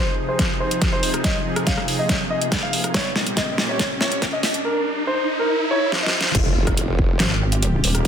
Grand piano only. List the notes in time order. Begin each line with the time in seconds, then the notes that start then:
Already playing: C5
0.29 C5
0.60 C5
0.93 C5
1.24 D#5
1.67 F5
1.99 D#5
2.30 D#5
2.63 F5
2.94 C#5
3.37 D#5
3.69 C#5
4.01 C#5
4.33 D#5
4.65 A#4
5.07 C5
5.39 A#4
5.71 C#5
6.03 D#5